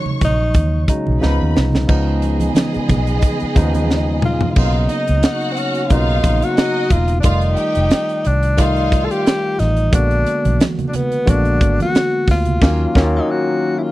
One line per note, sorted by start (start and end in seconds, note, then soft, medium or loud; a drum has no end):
0.00 0.88 C#3 medium
0.00 0.88 F#3 medium
0.00 0.89 G#3 medium
0.00 0.89 D#4 medium
0.00 0.84 C#5 loud
0.00 0.84 C#6 loud
0.06 low conga medium
0.21 0.51 A#1 medium
0.21 0.86 D#4 loud
0.21 kick medium
0.21 closed hi-hat medium
0.21 low conga medium
0.54 0.85 D#2 loud
0.54 kick medium
0.54 closed hi-hat medium
0.54 muted conga soft
0.54 high conga soft
0.88 1.20 C#3 medium
0.88 1.22 F#3 medium
0.88 1.22 G#3 medium
0.88 1.22 D#4 medium
0.88 kick medium
0.88 closed hi-hat medium
0.88 muted conga soft
1.07 1.21 B1 medium
1.07 high conga medium
1.21 1.39 C#2 loud
1.21 1.79 C#3 medium
1.21 1.80 F3 medium
1.21 1.80 B3 medium
1.21 1.80 D#4 medium
1.21 1.54 B4 medium
1.21 1.54 B5 medium
1.21 snare medium
1.21 muted conga soft
1.42 1.55 D#2 medium
1.56 1.86 C2 medium
1.56 snare medium
1.56 muted conga soft
1.73 snare medium
1.73 low conga medium
1.88 2.48 C#2 loud
1.88 3.04 C#3 medium
1.88 3.04 F3 medium
1.88 3.04 G#3 medium
1.88 4.53 B3 medium
1.88 3.05 B3 medium
1.88 3.05 D#4 medium
1.88 4.53 G#4 medium
1.88 4.53 D#5 medium
1.88 kick loud
1.88 crash medium
1.88 muted conga soft
2.22 closed hi-hat medium
2.22 muted conga soft
2.40 closed hi-hat medium
2.40 high conga medium
2.55 snare loud
2.55 closed hi-hat medium
2.55 high conga medium
2.74 muted fingered electric bass stroke soft
2.74 closed hi-hat soft
2.89 3.19 B1 medium
2.89 kick loud
2.89 closed hi-hat medium
2.89 muted conga soft
2.89 low conga medium
3.07 closed hi-hat medium
3.22 kick medium
3.22 closed hi-hat medium
3.22 muted conga soft
3.22 high conga medium
3.40 muted fingered electric bass stroke soft
3.40 closed hi-hat soft
3.55 4.37 D#2 medium
3.55 4.43 C#3 medium
3.55 4.43 F3 medium
3.55 4.43 G#3 medium
3.55 4.43 B3 medium
3.55 4.44 D#4 loud
3.55 kick medium
3.55 closed hi-hat medium
3.55 muted conga soft
3.74 closed hi-hat medium
3.74 high conga medium
3.90 snare medium
3.90 muted conga soft
4.22 4.49 F4 medium
4.22 mid tom medium
4.22 muted conga soft
4.41 floor tom medium
4.41 low conga medium
4.51 4.59 F4 medium
4.56 4.86 B1 loud
4.56 5.72 C#3 medium
4.56 5.73 F#3 medium
4.56 5.73 A#3 medium
4.56 5.73 B3 medium
4.56 5.53 D#4 loud
4.56 5.73 D#4 medium
4.56 4.83 F4 loud
4.56 4.83 F5 loud
4.56 kick loud
4.56 crash loud
4.89 5.17 D#4 medium
4.89 5.17 D#5 medium
4.89 closed hi-hat medium
5.08 5.22 C#2 medium
5.08 closed hi-hat medium
5.23 5.86 F#4 loud
5.23 5.87 F#5 loud
5.23 snare loud
5.23 closed hi-hat medium
5.41 closed hi-hat soft
5.52 5.59 C4 medium
5.57 5.93 C#4 medium
5.57 closed hi-hat medium
5.75 closed hi-hat medium
5.89 6.20 B1 medium
5.89 7.06 C#3 medium
5.89 7.06 F#3 medium
5.89 7.07 A#3 medium
5.89 7.07 B3 medium
5.89 7.07 D#4 medium
5.89 6.46 D#4 medium
5.89 6.53 F4 loud
5.89 6.53 F5 loud
5.89 kick medium
5.89 closed hi-hat medium
6.24 6.40 A#1 medium
6.24 kick medium
6.24 closed hi-hat medium
6.42 6.93 F#4 loud
6.42 closed hi-hat medium
6.57 7.06 D#4 loud
6.57 7.06 D#5 loud
6.57 snare loud
6.57 closed hi-hat medium
6.90 7.21 E1 medium
6.90 7.19 F4 loud
6.90 kick loud
6.90 closed hi-hat medium
7.08 closed hi-hat medium
7.20 8.40 D#3 medium
7.20 8.40 G3 medium
7.20 8.40 A3 medium
7.20 7.26 D4 medium
7.20 kick loud
7.20 closed hi-hat loud
7.24 7.54 F1 loud
7.24 8.28 D#4 loud
7.24 7.51 F4 loud
7.24 8.41 F4 medium
7.24 8.40 D5 medium
7.24 7.51 F5 loud
7.41 closed hi-hat soft
7.57 8.21 G4 medium
7.57 8.21 G5 loud
7.57 closed hi-hat medium
7.75 7.90 F1 medium
7.75 closed hi-hat medium
7.90 snare loud
7.90 closed hi-hat medium
8.09 closed hi-hat soft
8.25 9.07 C2 medium
8.25 8.62 D4 loud
8.25 closed hi-hat medium
8.43 closed hi-hat medium
8.57 9.74 D#3 medium
8.57 9.74 G3 medium
8.57 9.74 A3 medium
8.57 9.06 D#4 loud
8.57 9.55 F4 loud
8.57 9.75 F4 medium
8.57 9.75 D5 medium
8.57 9.56 F5 loud
8.57 kick medium
8.57 closed hi-hat medium
8.76 closed hi-hat soft
8.92 kick medium
8.92 closed hi-hat medium
9.05 9.13 A4 medium
9.11 9.61 G4 loud
9.11 closed hi-hat medium
9.27 snare loud
9.27 closed hi-hat medium
9.59 9.90 A1 loud
9.59 9.93 D#4 loud
9.59 snare soft
9.59 closed hi-hat medium
9.77 closed hi-hat medium
9.91 10.23 A#1 loud
9.91 9.99 C#3 medium
9.91 11.08 G#3 medium
9.91 11.08 A#3 medium
9.91 11.09 B3 medium
9.91 10.64 D4 loud
9.91 11.09 F#4 medium
9.91 kick loud
9.91 closed hi-hat loud
9.91 muted conga soft
9.98 11.11 D3 medium
10.11 closed hi-hat soft
10.26 closed hi-hat medium
10.26 muted conga soft
10.45 10.59 B1 loud
10.45 closed hi-hat medium
10.45 high conga medium
10.60 snare loud
10.60 closed hi-hat medium
10.60 muted conga soft
10.60 high conga medium
10.79 closed hi-hat soft
10.79 low conga medium
10.89 10.97 D4 medium
10.93 11.32 B3 medium
10.93 closed hi-hat medium
10.93 low conga medium
11.12 closed hi-hat medium
11.26 11.57 A#1 loud
11.26 12.42 D3 medium
11.26 12.42 G#3 medium
11.26 12.43 A#3 medium
11.26 12.43 B3 medium
11.26 12.43 F#4 medium
11.26 kick medium
11.26 closed hi-hat medium
11.26 high conga medium
11.30 11.80 D4 loud
11.45 closed hi-hat soft
11.61 11.77 G#1 medium
11.61 kick medium
11.61 closed hi-hat medium
11.80 12.26 F#4 loud
11.80 closed hi-hat medium
11.80 high conga medium
11.95 snare loud
11.95 closed hi-hat medium
12.27 12.58 D2 medium
12.27 13.11 F4 loud
12.27 kick medium
12.27 snare soft
12.27 open hi-hat soft
12.27 muted conga soft
12.45 closed hi-hat medium
12.45 low conga medium
12.61 12.85 D#2 loud
12.61 12.85 D#3 medium
12.61 12.85 F#3 medium
12.61 12.85 A#3 loud
12.61 12.85 C#4 medium
12.61 kick loud
12.61 snare loud
12.61 crash medium
12.69 12.89 F4 loud
12.95 13.19 D#2 loud
12.95 13.19 D#3 loud
12.95 13.19 F#3 loud
12.95 13.19 A#3 medium
12.95 13.19 C#4 loud
12.95 kick loud
12.95 snare loud
13.03 13.23 F4 loud
13.16 13.33 D#4 medium
13.31 13.80 F#4 medium
13.78 13.84 E4 medium
13.83 13.92 F4 medium